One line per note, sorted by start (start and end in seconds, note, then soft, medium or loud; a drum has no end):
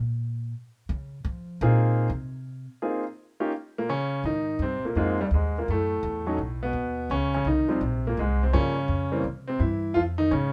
0.00 0.50 A#2 medium
0.89 1.23 C#3 medium
1.25 1.58 F3 medium
1.61 2.06 A#2 medium
1.61 2.07 A#3 medium
1.61 2.07 C4 medium
1.61 2.07 D#4 medium
1.61 2.07 F4 medium
1.61 2.07 G#4 medium
2.10 2.64 C3 medium
2.82 3.03 A#3 soft
2.82 3.02 C4 soft
2.82 3.02 D#4 soft
2.82 3.02 F4 soft
2.82 3.02 G#4 medium
3.40 3.51 A#3 medium
3.40 3.51 C#4 medium
3.40 3.51 D#4 medium
3.40 3.51 F4 medium
3.40 3.51 G4 medium
3.78 3.89 A#2 medium
3.78 3.88 A#3 medium
3.89 4.22 C#3 medium
3.89 4.22 C#4 medium
4.24 4.58 G#2 medium
4.24 4.59 D#3 medium
4.24 4.61 D#4 medium
4.59 4.81 G2 medium
4.59 4.83 C4 medium
4.63 4.83 C3 medium
4.83 4.96 A#2 medium
4.83 4.95 A#3 medium
4.83 muted upright bass stroke soft
4.95 5.30 F2 medium
4.95 5.18 G#2 medium
4.95 5.18 G#3 medium
4.95 5.17 A#3 medium
4.95 5.17 C4 medium
4.95 5.17 D#4 medium
4.95 5.17 F4 medium
5.21 5.27 G2 medium
5.21 5.26 G3 medium
5.31 5.65 D#2 medium
5.31 5.54 G#2 medium
5.31 5.56 G#3 medium
5.58 5.68 A#2 medium
5.58 5.69 A#3 medium
5.68 6.02 F#2 medium
5.68 6.60 A2 medium
5.68 6.25 A3 medium
6.03 6.37 E2 medium
6.27 6.37 F#3 medium
6.27 6.37 A3 medium
6.27 6.37 C#4 medium
6.27 6.37 D#4 medium
6.38 6.72 B1 medium
6.63 7.08 B2 medium
6.63 7.12 B3 medium
6.73 7.08 D#2 medium
7.10 7.44 C#2 medium
7.10 7.33 C#3 medium
7.10 7.33 C#4 medium
7.34 7.46 C#3 medium
7.34 7.45 C#4 medium
7.45 7.80 C2 medium
7.45 7.67 D#4 medium
7.49 7.69 D#3 medium
7.68 8.03 C3 medium
7.68 7.80 F3 medium
7.68 7.80 G3 medium
7.68 7.80 C4 medium
7.68 7.80 D#4 medium
7.81 8.16 A#1 medium
8.07 8.19 A#2 medium
8.07 8.18 A#3 medium
8.17 8.52 C2 medium
8.17 8.41 G#2 medium
8.17 8.40 G#3 medium
8.43 8.54 C3 medium
8.43 8.54 C4 medium
8.53 8.87 G2 medium
8.53 9.22 C#3 medium
8.53 8.74 F3 soft
8.53 8.74 G3 medium
8.53 8.74 A#3 medium
8.53 9.21 C#4 medium
8.88 9.23 F2 medium
9.12 9.23 E3 medium
9.12 9.23 G3 medium
9.12 9.23 A#3 medium
9.12 9.23 C4 medium
9.24 9.59 C3 medium
9.48 9.60 C3 medium
9.48 9.59 C4 medium
9.60 9.95 G2 medium
9.60 9.95 E3 medium
9.60 9.93 E4 medium
9.94 10.31 F2 medium
9.94 10.02 F3 medium
9.94 10.00 F4 medium
10.18 10.31 D#3 medium
10.18 10.32 D#4 medium
10.31 10.53 G#2 medium
10.31 10.53 C#3 medium
10.31 10.53 C#4 medium